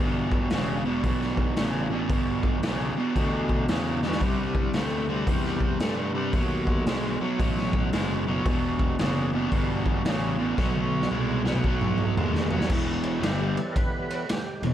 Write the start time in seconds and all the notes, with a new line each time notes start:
Already playing: G1 G3 D4 F#4
0.00 E2 B2
0.32 kick
0.50 E1 E2 C#3, snare, open hi-hat
0.85 E2 B2
1.04 B1 E2 B2, kick, open hi-hat
1.21 snare
1.37 kick
1.56 A1 E2 C#3, snare, open hi-hat
1.90 E2 B2
2.09 G1 E2 B2 D#4 G4 G#4, kick, open hi-hat
2.27 D4 F#4 G4
2.43 kick
2.63 B1 E2 C#3, snare, open hi-hat
2.96 E2 B2, muted fingered electric bass stroke
3.15 D2 E2 B2, kick, open hi-hat
3.49 kick
3.68 E2 C#3, snare, open hi-hat
4.03 E2 B2, snare
4.12 snare
4.20 C2 C3 G3 B3 D4 E4, kick, open hi-hat
4.55 kick
4.73 D2 C3 A3, snare, open hi-hat
5.09 C3 G3
5.27 E2 C3 G3, kick, open hi-hat
5.45 snare
5.60 kick
5.80 G2 C3 A3, snare, open hi-hat
6.15 C3 G3
6.33 D#2 B2 F#3 A3 D#4 F#4, kick, open hi-hat
6.67 kick
6.86 B1 B2 G#3, snare, open hi-hat
7.04 snare
7.21 B2 F#3, muted fingered electric bass stroke
7.39 A1 B2 F#3, kick, open hi-hat
7.58 snare
7.73 kick
7.93 F#1 B2 G#3, snare, open hi-hat
8.27 B2 F#3
8.45 E1 E2 B2 G3 D4 F#4, kick, open hi-hat
8.79 kick
8.99 F#1 E2 C#3, snare, open hi-hat
9.33 E2 B2
9.52 G1 E2 B2, kick, open hi-hat
9.86 kick
10.05 A1 E2 C#3, snare, open hi-hat
10.39 E2 B2
10.58 B1 B2 F#3 A3 D#4 F#4, kick, snare
10.75 high tom
11.02 snare
11.11 C2 B2 G#3, mid tom
11.45 B2 F#3, snare
11.55 mid tom
11.64 B1 B2 F#3, kick
11.81 mid tom
11.98 mid tom
12.17 D#2 B2 G#3, floor tom
12.35 snare
12.51 B2 F#3, floor tom
12.61 snare
12.70 E1 E2 B2 E3, kick, crash
12.88 snare
13.03 ride
13.22 G1 G2 D3 G3 E4, snare, ride
13.41 G4
13.56 E3 G3 B3 A4, ride
13.73 A#4, kick, ride
13.77 B4
14.10 ride
14.29 G4, snare, ride
14.62 E1 E2 B2, ride